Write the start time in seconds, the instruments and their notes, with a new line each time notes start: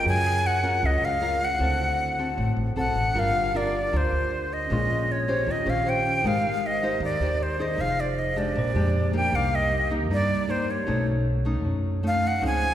Already playing: nylon-string guitar C#4 F4 A#4
0.03 upright bass F#2, nylon-string guitar F#3, tine electric piano F#4 G#4 A#4
0.09 tine electric piano C#5, flute G#5
0.46 flute F#5
0.63 nylon-string guitar C#4 F4 A#4
0.83 upright bass C#2, nylon-string guitar C#3, flute D#5
1.02 upright bass C#2, flute F5
1.21 nylon-string guitar C#4 F4 A#4
1.45 flute F#5
1.57 upright bass D2, nylon-string guitar D3 C4 F#4 A4, tine electric piano E4 F#4
1.61 tine electric piano A4 C5
2.19 nylon-string guitar C4 F#4 A4
2.37 upright bass A1, nylon-string guitar A2
2.57 upright bass A1
2.76 upright bass B1, nylon-string guitar C4 F#4 A4, flute F#5
2.96 upright bass A1
3.12 upright bass G1, nylon-string guitar G3 D4 F4 A#4, tine electric piano D4 F4 G4
3.18 tine electric piano A#4, flute F5
3.54 nylon-string guitar D4 F4 A#4, flute D5
3.92 upright bass D2, nylon-string guitar D3 D4 F4 A#4
3.97 flute C5
4.12 upright bass D2
4.53 flute D#5
4.67 upright bass A#1, nylon-string guitar A#2 G#3, tine electric piano C#4 F4
4.71 nylon-string guitar C#4 F4, tine electric piano G#4 C6
5.12 flute C#5
5.28 nylon-string guitar C#4 G4 C5
5.44 upright bass D#2, nylon-string guitar D#3, tine electric piano C#4 F4 G4
5.50 tine electric piano C5, flute D#5
5.66 upright bass A#1, nylon-string guitar C#4 G4 C5, flute F5
5.86 nylon-string guitar C#4 G4 C5, flute G5
6.21 upright bass G#1, nylon-string guitar G#3 D#4, tine electric piano D#4 G4
6.25 nylon-string guitar G4 C5, tine electric piano A#4 C5, flute F5
6.66 flute D#5
6.83 nylon-string guitar D#4 G4 C5
7.00 upright bass D#2, nylon-string guitar D#3, flute D5
7.20 upright bass D#2, nylon-string guitar D#4 G4 C5
7.43 flute C5
7.59 nylon-string guitar D#4 G#4 C5, flute D#5
7.76 upright bass F1, nylon-string guitar F3, tine electric piano D#4 G#4
7.81 tine electric piano C5, flute F5
8.00 flute D5
8.18 flute D#5
8.36 nylon-string guitar G#3 D4 G4, flute D5
8.53 upright bass A#1, nylon-string guitar A#2, tine electric piano D4 G4
8.59 tine electric piano C5
8.75 upright bass F2, nylon-string guitar G#3 D4 G4
9.13 nylon-string guitar A#3 D#4 G4, flute G5
9.30 upright bass C2, nylon-string guitar C3, tine electric piano D#4 G4 A#4
9.35 flute F5, tine electric piano D6
9.55 flute D#5
9.90 nylon-string guitar A#3 D#4 G4
10.10 upright bass G2, nylon-string guitar G3 A#3 D#4 G4, flute D5
10.48 nylon-string guitar A#3 D#4 G4, tine electric piano D#4 G4 A#4 D5, flute C5
10.71 flute C#5
10.85 upright bass B1, nylon-string guitar B2 A3 C#4 D#4, tine electric piano D#4 F#4 A4
10.91 tine electric piano C#5
11.45 nylon-string guitar A3 C#4 D#4
11.64 upright bass F#2, nylon-string guitar F#3
12.03 nylon-string guitar A3 C#4 D#4
12.07 flute F5
12.27 flute F#5
12.39 upright bass C#2, nylon-string guitar C#3 F3 C4 D#4, tine electric piano D#4 F4 G#4
12.46 tine electric piano C5, flute G#5